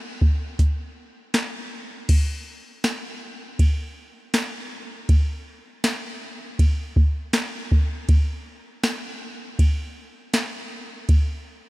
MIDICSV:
0, 0, Header, 1, 2, 480
1, 0, Start_track
1, 0, Tempo, 750000
1, 1337, Time_signature, 4, 2, 24, 8
1, 7482, End_track
2, 0, Start_track
2, 0, Title_t, "Drums"
2, 137, Note_on_c, 9, 36, 87
2, 201, Note_off_c, 9, 36, 0
2, 378, Note_on_c, 9, 36, 77
2, 379, Note_on_c, 9, 42, 69
2, 442, Note_off_c, 9, 36, 0
2, 443, Note_off_c, 9, 42, 0
2, 857, Note_on_c, 9, 42, 68
2, 858, Note_on_c, 9, 38, 96
2, 921, Note_off_c, 9, 42, 0
2, 922, Note_off_c, 9, 38, 0
2, 1337, Note_on_c, 9, 49, 98
2, 1337, Note_on_c, 9, 51, 55
2, 1338, Note_on_c, 9, 36, 115
2, 1401, Note_off_c, 9, 49, 0
2, 1401, Note_off_c, 9, 51, 0
2, 1402, Note_off_c, 9, 36, 0
2, 1817, Note_on_c, 9, 54, 59
2, 1818, Note_on_c, 9, 38, 100
2, 1818, Note_on_c, 9, 51, 58
2, 1881, Note_off_c, 9, 54, 0
2, 1882, Note_off_c, 9, 38, 0
2, 1882, Note_off_c, 9, 51, 0
2, 2299, Note_on_c, 9, 36, 86
2, 2300, Note_on_c, 9, 51, 65
2, 2363, Note_off_c, 9, 36, 0
2, 2364, Note_off_c, 9, 51, 0
2, 2775, Note_on_c, 9, 51, 61
2, 2777, Note_on_c, 9, 38, 105
2, 2779, Note_on_c, 9, 54, 63
2, 2839, Note_off_c, 9, 51, 0
2, 2841, Note_off_c, 9, 38, 0
2, 2843, Note_off_c, 9, 54, 0
2, 3257, Note_on_c, 9, 36, 115
2, 3257, Note_on_c, 9, 51, 56
2, 3321, Note_off_c, 9, 36, 0
2, 3321, Note_off_c, 9, 51, 0
2, 3736, Note_on_c, 9, 54, 62
2, 3737, Note_on_c, 9, 51, 58
2, 3738, Note_on_c, 9, 38, 107
2, 3800, Note_off_c, 9, 54, 0
2, 3801, Note_off_c, 9, 51, 0
2, 3802, Note_off_c, 9, 38, 0
2, 4218, Note_on_c, 9, 36, 93
2, 4220, Note_on_c, 9, 51, 59
2, 4282, Note_off_c, 9, 36, 0
2, 4284, Note_off_c, 9, 51, 0
2, 4456, Note_on_c, 9, 36, 87
2, 4520, Note_off_c, 9, 36, 0
2, 4692, Note_on_c, 9, 51, 62
2, 4694, Note_on_c, 9, 38, 109
2, 4695, Note_on_c, 9, 54, 62
2, 4756, Note_off_c, 9, 51, 0
2, 4758, Note_off_c, 9, 38, 0
2, 4759, Note_off_c, 9, 54, 0
2, 4938, Note_on_c, 9, 36, 90
2, 5002, Note_off_c, 9, 36, 0
2, 5175, Note_on_c, 9, 51, 55
2, 5176, Note_on_c, 9, 36, 116
2, 5239, Note_off_c, 9, 51, 0
2, 5240, Note_off_c, 9, 36, 0
2, 5654, Note_on_c, 9, 54, 62
2, 5655, Note_on_c, 9, 38, 109
2, 5655, Note_on_c, 9, 51, 58
2, 5718, Note_off_c, 9, 54, 0
2, 5719, Note_off_c, 9, 38, 0
2, 5719, Note_off_c, 9, 51, 0
2, 6137, Note_on_c, 9, 36, 93
2, 6139, Note_on_c, 9, 51, 68
2, 6201, Note_off_c, 9, 36, 0
2, 6203, Note_off_c, 9, 51, 0
2, 6614, Note_on_c, 9, 51, 60
2, 6616, Note_on_c, 9, 38, 106
2, 6618, Note_on_c, 9, 54, 63
2, 6678, Note_off_c, 9, 51, 0
2, 6680, Note_off_c, 9, 38, 0
2, 6682, Note_off_c, 9, 54, 0
2, 7096, Note_on_c, 9, 51, 54
2, 7097, Note_on_c, 9, 36, 117
2, 7160, Note_off_c, 9, 51, 0
2, 7161, Note_off_c, 9, 36, 0
2, 7482, End_track
0, 0, End_of_file